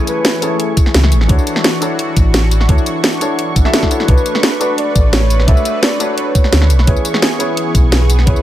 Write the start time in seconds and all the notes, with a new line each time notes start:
Already playing: E3 A3 C#4 E4 G#4 A4 C#5 G#5 C#6, downlifter
0.07 B4, closed hi-hat, tambourine
0.25 snare, closed hi-hat
0.41 C#4 E4 G#4 A4 C#5, closed hi-hat, tambourine
0.60 closed hi-hat
0.77 kick, closed hi-hat, tambourine
0.86 snare
0.94 C#2, snare, closed hi-hat
1.04 snare
1.12 A1, closed hi-hat, tambourine
1.21 snare
1.28 D2 D4 E4 F#4 A4 C#5, kick, closed hi-hat
1.39 tambourine
1.47 closed hi-hat, tambourine
1.56 snare
1.64 snare, closed hi-hat
1.81 D4 E4 F#4 A4 C#5, closed hi-hat, tambourine
1.99 closed hi-hat
2.17 A1, kick, closed hi-hat, tambourine
2.34 snare, closed hi-hat
2.51 closed hi-hat, tambourine
2.61 snare
2.68 D2 D4 E4 F#4 A4 C#5, kick, closed hi-hat
2.78 tambourine
2.86 closed hi-hat, tambourine
3.04 snare, closed hi-hat
3.13 tambourine
3.20 D4 E4 F#4 A4 C#5, closed hi-hat, tambourine
3.39 closed hi-hat
3.56 A1, kick, closed hi-hat, tambourine
3.65 D4 E4 F#4 A4 E5, snare
3.73 A4, snare, closed hi-hat
3.83 kick, snare
3.90 D4 E4 F#4 A4 C#5, closed hi-hat, tambourine
4.00 snare
4.07 B1 A3 D4 F#4 A4 B4 C#5, kick, closed hi-hat
4.18 tambourine
4.26 closed hi-hat, tambourine
4.35 snare
4.43 snare, closed hi-hat
4.59 D4 F#4 A4 B4 D5, closed hi-hat, tambourine
4.78 D5, closed hi-hat
4.96 A1, kick, closed hi-hat, tambourine
5.13 C#5, snare, closed hi-hat
5.30 closed hi-hat, tambourine
5.40 snare
5.47 B1 D4 F#4 A4 B4 C#5 E5, kick, closed hi-hat
5.57 tambourine
5.65 closed hi-hat, tambourine
5.83 D5, snare, closed hi-hat
5.99 D4 F#4 A4 B4 C#5, closed hi-hat, tambourine
6.18 C#5, closed hi-hat
6.35 kick, closed hi-hat, tambourine
6.44 snare
6.53 D2, snare, closed hi-hat
6.62 snare
6.70 B1, closed hi-hat, tambourine
6.79 snare
6.86 C#2 E3 B3 C#4 E4 G#4 B4 C#5 C#6, kick, closed hi-hat
6.96 tambourine
7.05 closed hi-hat, tambourine
7.14 snare
7.22 snare, closed hi-hat
7.39 C#4 E4 G#4 B4 C#5, closed hi-hat, tambourine
7.57 closed hi-hat
7.75 B1, kick, closed hi-hat, tambourine
7.92 snare, closed hi-hat
8.10 closed hi-hat, tambourine
8.19 snare
8.26 C#2 C#4 E4 G#4 B4 C#5, kick, closed hi-hat
8.36 tambourine